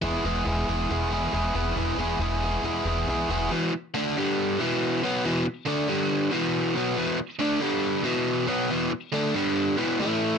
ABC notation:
X:1
M:4/4
L:1/8
Q:1/4=139
K:E
V:1 name="Overdriven electric guitar" clef=bass
[E,G,B,EG] [E,G,B,EG] [E,G,B,EG] [E,G,B,EG] [E,G,B,EG] [E,G,B,EG] [E,G,B,EG] [E,G,B,EG] | [E,G,B,EG] [E,G,B,EG] [E,G,B,EG] [E,G,B,EG] [E,G,B,EG] [E,G,B,EG] [E,G,B,EG] [E,G,B,EG] | [E,,B,,E,] z [=D,A,=D] [=G,,D,=G,]2 [E,,B,,E,]2 [B,,F,B,] | [E,,B,,E,] z [=D,A,=D] [=G,,D,=G,]2 [E,,B,,E,]2 [B,,F,B,] |
[E,,B,,E,] z [=D,A,=D] [=G,,D,=G,]2 [E,,B,,E,]2 [B,,F,B,] | [E,,B,,E,] z [=D,A,=D] [=G,,D,=G,]2 [E,,B,,E,] [A,,E,A,]2 |]
V:2 name="Upright bass" clef=bass
E,,, E,,, E,,, E,,, E,,,2 E,,, E,,, | E,,, E,,, E,,,2 E,,, E,,, B,,, E,,, | z8 | z8 |
z8 | z8 |]